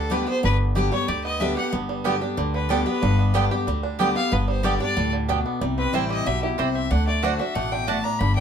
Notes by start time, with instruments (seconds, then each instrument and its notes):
Already playing: upright bass D2, five-string banjo G3 B3 D4 G4, fiddle A4
0.10 steel-string acoustic guitar D3 G3 B3 G4, five-string banjo G4, fiddle B4
0.26 five-string banjo B3, steel-string acoustic guitar B3 G4, fiddle C5
0.43 upright bass G1, steel-string acoustic guitar G2, five-string banjo D3, fiddle B4
0.75 steel-string acoustic guitar D3 G3 B3 G4, five-string banjo G4
0.92 five-string banjo G3, steel-string acoustic guitar B3 G4, fiddle C#5
1.08 upright bass D2, steel-string acoustic guitar D3, five-string banjo G4, fiddle D5
1.24 five-string banjo B3, fiddle D#5
1.40 steel-string acoustic guitar D3 G3 B3 G4, five-string banjo D4, fiddle E5
1.56 steel-string acoustic guitar B3 G4, five-string banjo G4, fiddle F#5
1.73 upright bass G1, steel-string acoustic guitar G2, five-string banjo B3
1.89 five-string banjo G3
2.04 steel-string acoustic guitar D3 G3 B3 G4, mandolin B3 G4 D5 G5, five-string banjo G4
2.21 steel-string acoustic guitar B3 G4, five-string banjo D4
2.37 upright bass D2, steel-string acoustic guitar D3, five-string banjo G3
2.54 five-string banjo D3, fiddle B4
2.69 steel-string acoustic guitar D3 G3 B3 G4, mandolin B3 G4 D5 G5, five-string banjo D4, fiddle A4
2.86 five-string banjo B3, steel-string acoustic guitar B3 G4, fiddle B4
3.02 upright bass G1, steel-string acoustic guitar G2, five-string banjo G3
3.19 five-string banjo B3
3.34 steel-string acoustic guitar D3 G3 B3 G4, mandolin B3 G4 D5 G5, five-string banjo D4
3.51 steel-string acoustic guitar B3 G4, five-string banjo G4
3.67 upright bass D2, steel-string acoustic guitar D3, five-string banjo G3
3.83 five-string banjo D4
3.99 steel-string acoustic guitar D3 G3 B3 G4, mandolin B3 G4 D5 G5, five-string banjo G4
4.16 five-string banjo B3, steel-string acoustic guitar B3 G4, fiddle F5
4.32 upright bass G1, steel-string acoustic guitar G2, five-string banjo B3, fiddle B4
4.48 five-string banjo G3, fiddle C5
4.63 steel-string acoustic guitar D3 G3 B3 G4, mandolin B3 G4 D5 G5, five-string banjo G4, fiddle D5
4.80 steel-string acoustic guitar B3 G4, five-string banjo D4, fiddle D5
4.97 upright bass D2, steel-string acoustic guitar A2, five-string banjo G3
5.13 five-string banjo D3
5.29 steel-string acoustic guitar B2, mandolin B3 G4 D5 G5, five-string banjo D4
5.46 five-string banjo B3
5.61 upright bass C2, steel-string acoustic guitar C3, five-string banjo G3
5.78 five-string banjo C4, fiddle B4
5.93 upright bass A1, steel-string acoustic guitar E3 G3 C4 E4, mandolin C4 E4 C5 G5, five-string banjo E4, fiddle C5
6.10 five-string banjo G4, fiddle D#5
6.26 upright bass B1, steel-string acoustic guitar B2, five-string banjo G3, fiddle E5
6.43 five-string banjo E4, fiddle G4
6.58 upright bass C2, steel-string acoustic guitar C3, mandolin C4 E4 C5 G5, five-string banjo G4, fiddle C5
6.75 five-string banjo C4, fiddle E5
6.91 upright bass D2, steel-string acoustic guitar D3, five-string banjo D4, fiddle F#5
7.07 five-string banjo A3, fiddle D5
7.22 steel-string acoustic guitar D3 A3 D4 F#4, mandolin A3 F#4 D5 F#5, five-string banjo D4, fiddle C5
7.39 five-string banjo D4, steel-string acoustic guitar D4 F#4, fiddle E5
7.55 upright bass A1, steel-string acoustic guitar B2, five-string banjo A3, fiddle F#5
7.72 five-string banjo D3, fiddle G5
7.87 steel-string acoustic guitar A2, mandolin A3 F#4 D5 F#5, five-string banjo D4, fiddle A5
8.03 five-string banjo D4, fiddle A#5
8.19 upright bass G1, steel-string acoustic guitar G2, five-string banjo D3, fiddle B5
8.36 fiddle G5